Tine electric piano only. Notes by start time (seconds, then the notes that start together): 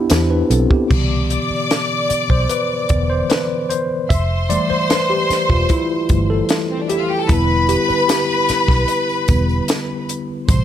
Already playing: B3 D4 E4 G4
0.10 E4 C5
0.30 D4 B4
0.50 C4 A4
0.70 B3 G4
0.90 B2 D3 E3
2.09 D5
2.30 C5
2.49 B4
2.89 D3 E3 B3 D5
3.10 C5
3.30 B4
3.70 C5
4.09 E5
4.50 E3 G3 A3 D5
4.70 C5
4.90 B4
5.10 G4
5.50 F4
5.70 E4
6.10 E3 G3 A3
6.30 A4
6.89 G4
7.29 D3 G3 B3 E4
7.69 G4
7.89 B4
8.09 G4
9.28 D3 G3 B3
10.48 B2 C3 G3